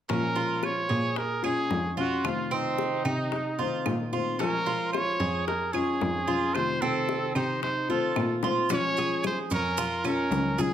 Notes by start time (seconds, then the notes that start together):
0.09 A#2 F3 G#3 C#4 F4 A#4, high bongo
0.36 F4, high bongo
0.63 C#5, high bongo, claves
0.89 A#2 G#4
1.16 A#4, muted nylon-string guitar stroke, high bongo
1.42 G#3 C#4 F4 G#4 C#5, high bongo, claves
1.70 F2 F3 G#3 C#4 F4, high bongo, low bongo
1.97 G#3 C#4 F4 F#4, high bongo
2.23 C3 D#3 A3 C4 F4, high bongo, claves
2.51 C4 D#4, high bongo
2.78 high bongo
3.05 C3 D#4, claves
3.32 muted nylon-string guitar stroke, high bongo
3.59 D#3 A3 C4 F4, high bongo
3.86 A#2 D#3 A3 C4 F4, high bongo, low bongo, claves
4.12 D#3 A3 C4 F4, high bongo
4.39 F3 G#3 C#4 F4 A#4, high bongo
4.66 F4, high bongo
4.93 C#5, high bongo, claves
5.20 F2 G#4
5.47 A#4, muted nylon-string guitar stroke, high bongo
5.73 G#3 C#4 F4 G#4 C#5, high bongo, claves
6.01 F2 F3 G#3 C#4 F4, high bongo, low bongo
6.27 G#3 C#4 F4, high bongo
6.54 C3 D#3 A3 C4 F4 C5, high bongo, claves
6.81 C4 A4, high bongo
7.09 high bongo
7.35 C3 D#4 C5, claves
7.62 C5, muted nylon-string guitar stroke, high bongo
7.89 D#3 A3 C4 F4 A4, high bongo
8.15 A#2 D#3 A3 C4 F4, high bongo, claves
8.43 D#3 A3 C4 F4, low bongo
8.69 F3 G#3 C#4 F4, high bongo, high conga, maracas
8.73 C#5
8.96 G#4, high bongo, high conga, maracas
9.23 C5, high bongo, high conga, claves, maracas
9.50 F2 C#4 A#4, high conga, maracas
9.77 F4, muted nylon-string guitar stroke, high bongo, high conga, maracas
10.04 G#3 C#4 F4 A#4, high bongo, high conga, claves, maracas
10.31 C#2 F3 G#3 C#4 F4, high bongo, low bongo, high conga, maracas
10.58 G#3 C#4 F4 G#4, high bongo, high conga, maracas